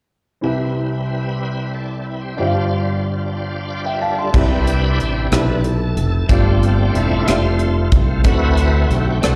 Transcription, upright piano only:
0, 0, Header, 1, 2, 480
1, 0, Start_track
1, 0, Key_signature, 0, "major"
1, 0, Tempo, 651466
1, 321, Time_signature, 6, 3, 24, 8
1, 6893, End_track
2, 0, Start_track
2, 0, Title_t, "Upright piano"
2, 0, Program_c, 0, 0
2, 305, Note_on_c, 0, 60, 42
2, 309, Note_on_c, 0, 64, 44
2, 316, Note_on_c, 0, 67, 45
2, 317, Note_on_c, 0, 48, 45
2, 318, Note_on_c, 0, 36, 43
2, 324, Note_on_c, 0, 71, 42
2, 332, Note_on_c, 0, 76, 49
2, 463, Control_c, 0, 64, 127
2, 1724, Note_off_c, 0, 60, 0
2, 1726, Note_off_c, 0, 64, 0
2, 1729, Note_off_c, 0, 48, 0
2, 1730, Note_off_c, 0, 36, 0
2, 1730, Note_off_c, 0, 67, 0
2, 1734, Note_off_c, 0, 71, 0
2, 1738, Note_off_c, 0, 76, 0
2, 1745, Note_on_c, 0, 62, 47
2, 1753, Note_on_c, 0, 65, 49
2, 1759, Note_on_c, 0, 43, 48
2, 1761, Note_on_c, 0, 67, 46
2, 1762, Note_on_c, 0, 31, 54
2, 1768, Note_on_c, 0, 72, 49
2, 1771, Control_c, 0, 64, 0
2, 1776, Note_on_c, 0, 76, 46
2, 1817, Note_off_c, 0, 76, 0
2, 1823, Note_on_c, 0, 77, 54
2, 1881, Control_c, 0, 64, 127
2, 2734, Note_off_c, 0, 77, 0
2, 2841, Note_on_c, 0, 79, 46
2, 2844, Note_on_c, 0, 76, 39
2, 2955, Note_off_c, 0, 79, 0
2, 2957, Note_off_c, 0, 76, 0
2, 2958, Note_on_c, 0, 81, 51
2, 2966, Note_on_c, 0, 77, 45
2, 3073, Note_off_c, 0, 81, 0
2, 3077, Note_off_c, 0, 77, 0
2, 3084, Note_on_c, 0, 84, 48
2, 3087, Note_on_c, 0, 81, 42
2, 3164, Note_off_c, 0, 62, 0
2, 3168, Note_off_c, 0, 65, 0
2, 3171, Note_off_c, 0, 43, 0
2, 3172, Note_off_c, 0, 31, 0
2, 3172, Note_off_c, 0, 67, 0
2, 3176, Note_off_c, 0, 72, 0
2, 3196, Note_on_c, 0, 60, 58
2, 3196, Note_on_c, 0, 64, 55
2, 3201, Note_on_c, 0, 67, 56
2, 3203, Note_on_c, 0, 48, 48
2, 3208, Note_on_c, 0, 71, 60
2, 3210, Control_c, 0, 64, 0
2, 3210, Note_on_c, 0, 76, 67
2, 3310, Note_off_c, 0, 84, 0
2, 3312, Note_off_c, 0, 81, 0
2, 3328, Control_c, 0, 64, 127
2, 3769, Note_off_c, 0, 60, 0
2, 3769, Note_off_c, 0, 64, 0
2, 3772, Note_off_c, 0, 67, 0
2, 3775, Note_off_c, 0, 71, 0
2, 3776, Note_off_c, 0, 76, 0
2, 3892, Note_off_c, 0, 48, 0
2, 3914, Note_on_c, 0, 60, 57
2, 3919, Note_on_c, 0, 64, 50
2, 3923, Note_on_c, 0, 67, 49
2, 3927, Note_on_c, 0, 71, 51
2, 3931, Note_on_c, 0, 76, 57
2, 4487, Note_off_c, 0, 60, 0
2, 4490, Note_off_c, 0, 64, 0
2, 4492, Note_off_c, 0, 67, 0
2, 4494, Note_off_c, 0, 71, 0
2, 4496, Note_off_c, 0, 76, 0
2, 4633, Note_on_c, 0, 60, 60
2, 4637, Note_on_c, 0, 62, 60
2, 4638, Note_on_c, 0, 43, 51
2, 4641, Note_on_c, 0, 65, 59
2, 4644, Note_on_c, 0, 67, 57
2, 4647, Note_on_c, 0, 74, 65
2, 4648, Control_c, 0, 64, 0
2, 4763, Control_c, 0, 64, 127
2, 5207, Note_off_c, 0, 60, 0
2, 5209, Note_off_c, 0, 62, 0
2, 5211, Note_off_c, 0, 65, 0
2, 5212, Note_off_c, 0, 67, 0
2, 5214, Note_off_c, 0, 74, 0
2, 5329, Note_off_c, 0, 43, 0
2, 5355, Note_on_c, 0, 60, 57
2, 5359, Note_on_c, 0, 62, 52
2, 5363, Note_on_c, 0, 65, 53
2, 5366, Note_on_c, 0, 67, 54
2, 5369, Note_on_c, 0, 76, 64
2, 5928, Note_off_c, 0, 60, 0
2, 5929, Note_off_c, 0, 62, 0
2, 5931, Note_off_c, 0, 65, 0
2, 5933, Note_off_c, 0, 67, 0
2, 5935, Note_off_c, 0, 76, 0
2, 6070, Note_on_c, 0, 60, 65
2, 6075, Note_on_c, 0, 62, 60
2, 6077, Note_on_c, 0, 50, 51
2, 6079, Note_on_c, 0, 66, 57
2, 6081, Note_on_c, 0, 69, 58
2, 6084, Note_on_c, 0, 74, 70
2, 6088, Control_c, 0, 64, 0
2, 6214, Control_c, 0, 64, 127
2, 6645, Note_off_c, 0, 60, 0
2, 6647, Note_off_c, 0, 62, 0
2, 6649, Note_off_c, 0, 66, 0
2, 6650, Note_off_c, 0, 69, 0
2, 6652, Note_off_c, 0, 74, 0
2, 6768, Note_off_c, 0, 50, 0
2, 6787, Note_on_c, 0, 60, 57
2, 6793, Note_on_c, 0, 62, 50
2, 6798, Note_on_c, 0, 66, 51
2, 6802, Note_on_c, 0, 69, 51
2, 6803, Note_on_c, 0, 74, 61
2, 6893, Note_off_c, 0, 60, 0
2, 6893, Note_off_c, 0, 62, 0
2, 6893, Note_off_c, 0, 66, 0
2, 6893, Note_off_c, 0, 69, 0
2, 6893, Note_off_c, 0, 74, 0
2, 6893, End_track
0, 0, End_of_file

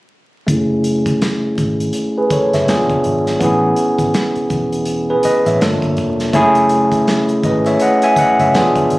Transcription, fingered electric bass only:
0, 0, Header, 1, 3, 480
1, 0, Start_track
1, 0, Tempo, 731707
1, 316, Time_signature, 4, 2, 24, 8
1, 5896, End_track
2, 0, Start_track
2, 0, Title_t, "Fingered electric bass"
2, 0, Program_c, 0, 33
2, 319, Note_on_c, 0, 30, 74
2, 1011, Note_off_c, 0, 30, 0
2, 1040, Note_on_c, 0, 32, 67
2, 1243, Note_off_c, 0, 32, 0
2, 1663, Note_on_c, 0, 30, 69
2, 1744, Note_off_c, 0, 30, 0
2, 1761, Note_on_c, 0, 28, 81
2, 1880, Note_off_c, 0, 28, 0
2, 1904, Note_on_c, 0, 29, 71
2, 1985, Note_off_c, 0, 29, 0
2, 2002, Note_on_c, 0, 32, 69
2, 2204, Note_off_c, 0, 32, 0
2, 2237, Note_on_c, 0, 33, 86
2, 2441, Note_off_c, 0, 33, 0
2, 2618, Note_on_c, 0, 32, 58
2, 2701, Note_off_c, 0, 32, 0
2, 2957, Note_on_c, 0, 28, 72
2, 3367, Note_off_c, 0, 28, 0
2, 3582, Note_on_c, 0, 33, 69
2, 3664, Note_off_c, 0, 33, 0
2, 3682, Note_on_c, 0, 31, 80
2, 3801, Note_off_c, 0, 31, 0
2, 3823, Note_on_c, 0, 31, 64
2, 3927, Note_off_c, 0, 31, 0
2, 3927, Note_on_c, 0, 29, 76
2, 4127, Note_off_c, 0, 29, 0
2, 4160, Note_on_c, 0, 30, 92
2, 4851, Note_off_c, 0, 30, 0
2, 4881, Note_on_c, 0, 32, 72
2, 5083, Note_off_c, 0, 32, 0
2, 5505, Note_on_c, 0, 30, 82
2, 5585, Note_off_c, 0, 30, 0
2, 5603, Note_on_c, 0, 28, 90
2, 5721, Note_off_c, 0, 28, 0
2, 5746, Note_on_c, 0, 29, 77
2, 5826, Note_off_c, 0, 29, 0
2, 5844, Note_on_c, 0, 32, 75
2, 5896, Note_off_c, 0, 32, 0
2, 5896, End_track
3, 0, Start_track
3, 0, Title_t, "Muted fingered electric bass strokes"
3, 1516, Note_on_c, 9, 29, 38
3, 1582, Note_off_c, 9, 29, 0
3, 2861, Note_on_c, 9, 29, 39
3, 2927, Note_off_c, 9, 29, 0
3, 3442, Note_on_c, 9, 29, 41
3, 3507, Note_off_c, 9, 29, 0
3, 5359, Note_on_c, 9, 29, 44
3, 5425, Note_off_c, 9, 29, 0
3, 5896, End_track
0, 0, End_of_file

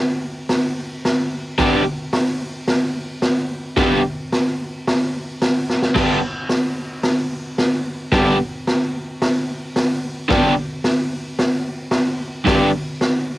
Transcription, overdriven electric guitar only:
0, 0, Header, 1, 2, 480
1, 0, Start_track
1, 0, Key_signature, 1, "major"
1, 0, Tempo, 543971
1, 1408, Time_signature, 4, 2, 24, 8
1, 11808, End_track
2, 0, Start_track
2, 0, Title_t, "Overdriven electric guitar"
2, 0, Program_c, 0, 29
2, 1395, Note_on_c, 0, 43, 92
2, 1398, Note_on_c, 0, 50, 103
2, 1407, Note_on_c, 0, 55, 110
2, 1411, Note_on_c, 0, 59, 105
2, 1412, Note_on_c, 0, 62, 118
2, 1422, Note_on_c, 0, 67, 116
2, 1594, Note_off_c, 0, 43, 0
2, 1596, Note_off_c, 0, 50, 0
2, 1600, Note_off_c, 0, 55, 0
2, 1602, Note_off_c, 0, 59, 0
2, 1603, Note_off_c, 0, 62, 0
2, 1608, Note_off_c, 0, 67, 0
2, 3326, Note_on_c, 0, 43, 96
2, 3329, Note_on_c, 0, 50, 107
2, 3334, Note_on_c, 0, 55, 99
2, 3339, Note_on_c, 0, 59, 112
2, 3342, Note_on_c, 0, 62, 97
2, 3345, Note_on_c, 0, 67, 102
2, 3523, Note_off_c, 0, 43, 0
2, 3524, Note_off_c, 0, 50, 0
2, 3526, Note_off_c, 0, 55, 0
2, 3529, Note_off_c, 0, 59, 0
2, 3531, Note_off_c, 0, 62, 0
2, 3532, Note_off_c, 0, 67, 0
2, 5248, Note_on_c, 0, 43, 97
2, 5250, Note_on_c, 0, 50, 87
2, 5260, Note_on_c, 0, 55, 103
2, 5266, Note_on_c, 0, 59, 108
2, 5266, Note_on_c, 0, 62, 99
2, 5270, Note_on_c, 0, 67, 105
2, 5445, Note_off_c, 0, 43, 0
2, 5446, Note_off_c, 0, 50, 0
2, 5451, Note_off_c, 0, 55, 0
2, 5454, Note_off_c, 0, 59, 0
2, 5454, Note_off_c, 0, 62, 0
2, 5456, Note_off_c, 0, 67, 0
2, 7166, Note_on_c, 0, 43, 100
2, 7174, Note_on_c, 0, 50, 104
2, 7174, Note_on_c, 0, 55, 107
2, 7180, Note_on_c, 0, 59, 106
2, 7187, Note_on_c, 0, 62, 109
2, 7194, Note_on_c, 0, 67, 112
2, 7365, Note_off_c, 0, 43, 0
2, 7368, Note_off_c, 0, 50, 0
2, 7369, Note_off_c, 0, 55, 0
2, 7371, Note_off_c, 0, 59, 0
2, 7375, Note_off_c, 0, 62, 0
2, 7379, Note_off_c, 0, 67, 0
2, 9079, Note_on_c, 0, 50, 105
2, 9081, Note_on_c, 0, 43, 101
2, 9088, Note_on_c, 0, 55, 111
2, 9098, Note_on_c, 0, 59, 111
2, 9098, Note_on_c, 0, 62, 112
2, 9103, Note_on_c, 0, 67, 106
2, 9279, Note_off_c, 0, 50, 0
2, 9280, Note_off_c, 0, 43, 0
2, 9284, Note_off_c, 0, 55, 0
2, 9289, Note_off_c, 0, 59, 0
2, 9289, Note_off_c, 0, 62, 0
2, 9291, Note_off_c, 0, 67, 0
2, 10989, Note_on_c, 0, 43, 98
2, 11002, Note_on_c, 0, 50, 94
2, 11005, Note_on_c, 0, 55, 95
2, 11007, Note_on_c, 0, 67, 103
2, 11010, Note_on_c, 0, 59, 94
2, 11010, Note_on_c, 0, 62, 101
2, 11191, Note_off_c, 0, 43, 0
2, 11197, Note_off_c, 0, 50, 0
2, 11198, Note_off_c, 0, 55, 0
2, 11200, Note_off_c, 0, 67, 0
2, 11201, Note_off_c, 0, 59, 0
2, 11201, Note_off_c, 0, 62, 0
2, 11808, End_track
0, 0, End_of_file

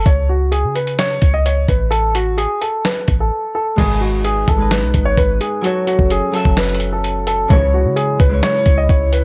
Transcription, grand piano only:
0, 0, Header, 1, 2, 480
1, 0, Start_track
1, 0, Tempo, 465116
1, 60, Time_signature, 4, 2, 24, 8
1, 9538, End_track
2, 0, Start_track
2, 0, Title_t, "Grand piano"
2, 0, Program_c, 0, 0
2, 64, Note_on_c, 0, 73, 74
2, 284, Note_off_c, 0, 73, 0
2, 304, Note_on_c, 0, 66, 72
2, 524, Note_off_c, 0, 66, 0
2, 535, Note_on_c, 0, 68, 81
2, 759, Note_off_c, 0, 68, 0
2, 779, Note_on_c, 0, 71, 82
2, 1001, Note_off_c, 0, 71, 0
2, 1021, Note_on_c, 0, 73, 94
2, 1359, Note_off_c, 0, 73, 0
2, 1381, Note_on_c, 0, 75, 86
2, 1491, Note_off_c, 0, 75, 0
2, 1505, Note_on_c, 0, 73, 76
2, 1724, Note_off_c, 0, 73, 0
2, 1739, Note_on_c, 0, 71, 74
2, 1961, Note_off_c, 0, 71, 0
2, 1971, Note_on_c, 0, 69, 90
2, 2196, Note_off_c, 0, 69, 0
2, 2222, Note_on_c, 0, 66, 90
2, 2443, Note_off_c, 0, 66, 0
2, 2455, Note_on_c, 0, 68, 91
2, 2679, Note_off_c, 0, 68, 0
2, 2698, Note_on_c, 0, 69, 72
2, 2920, Note_off_c, 0, 69, 0
2, 2942, Note_on_c, 0, 71, 78
2, 3280, Note_off_c, 0, 71, 0
2, 3306, Note_on_c, 0, 69, 68
2, 3642, Note_off_c, 0, 69, 0
2, 3661, Note_on_c, 0, 69, 76
2, 3882, Note_off_c, 0, 69, 0
2, 3897, Note_on_c, 0, 68, 85
2, 4120, Note_off_c, 0, 68, 0
2, 4135, Note_on_c, 0, 66, 76
2, 4359, Note_off_c, 0, 66, 0
2, 4382, Note_on_c, 0, 68, 91
2, 4603, Note_off_c, 0, 68, 0
2, 4627, Note_on_c, 0, 69, 76
2, 4845, Note_off_c, 0, 69, 0
2, 4861, Note_on_c, 0, 71, 85
2, 5199, Note_off_c, 0, 71, 0
2, 5215, Note_on_c, 0, 73, 89
2, 5328, Note_off_c, 0, 73, 0
2, 5341, Note_on_c, 0, 71, 92
2, 5562, Note_off_c, 0, 71, 0
2, 5580, Note_on_c, 0, 68, 76
2, 5801, Note_off_c, 0, 68, 0
2, 5827, Note_on_c, 0, 66, 81
2, 6042, Note_off_c, 0, 66, 0
2, 6058, Note_on_c, 0, 66, 87
2, 6280, Note_off_c, 0, 66, 0
2, 6310, Note_on_c, 0, 68, 92
2, 6527, Note_off_c, 0, 68, 0
2, 6540, Note_on_c, 0, 69, 79
2, 6762, Note_off_c, 0, 69, 0
2, 6785, Note_on_c, 0, 71, 85
2, 7121, Note_off_c, 0, 71, 0
2, 7145, Note_on_c, 0, 69, 73
2, 7481, Note_off_c, 0, 69, 0
2, 7500, Note_on_c, 0, 69, 86
2, 7722, Note_off_c, 0, 69, 0
2, 7744, Note_on_c, 0, 73, 76
2, 7964, Note_off_c, 0, 73, 0
2, 7984, Note_on_c, 0, 66, 77
2, 8204, Note_off_c, 0, 66, 0
2, 8215, Note_on_c, 0, 68, 81
2, 8439, Note_off_c, 0, 68, 0
2, 8458, Note_on_c, 0, 71, 89
2, 8681, Note_off_c, 0, 71, 0
2, 8700, Note_on_c, 0, 73, 98
2, 9039, Note_off_c, 0, 73, 0
2, 9060, Note_on_c, 0, 75, 88
2, 9171, Note_off_c, 0, 75, 0
2, 9185, Note_on_c, 0, 73, 81
2, 9404, Note_off_c, 0, 73, 0
2, 9418, Note_on_c, 0, 71, 79
2, 9538, Note_off_c, 0, 71, 0
2, 9538, End_track
0, 0, End_of_file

